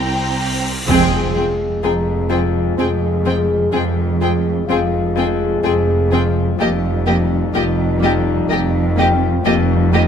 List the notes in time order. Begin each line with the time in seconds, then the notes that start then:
Already playing: C2 C4 E4 G5 A#5, cymbal swell
0.87 F1 F2 G#3 C4 G#4 G5, impact
1.35 F2 C4 G#4 G5
1.82 F1 F2 C4 G#4 G5 A#5
2.29 F2 C4 G#4 G5
2.78 F1 F2 C4 G#4 G5
3.25 F3 C4 G#4 G5
3.73 F1 F2 G#3 C4 G#4 G5
4.21 F2 C4 G#4 G5
4.67 F1 F2 C4 G#4 F5 G5
5.15 F2 C4 G#4 G5
5.63 F1 F2 C4 G#4 G5
6.12 F3 C4 G#4 G5
6.59 F1 F2 G3 A#3 D#4 G4 D#5
7.06 F2 A#3 G4 D#5
7.54 F1 F2 A#3 G4 D#5
8.00 F2 A#3 G4 D#5
8.49 F1 F2 A#3 G4 D#5
8.97 F3 A#3 G4 D#5 G5
9.45 F1 F2 G3 A#3 D#4 G4 D#5
9.93 F2 A#3 G4 D#5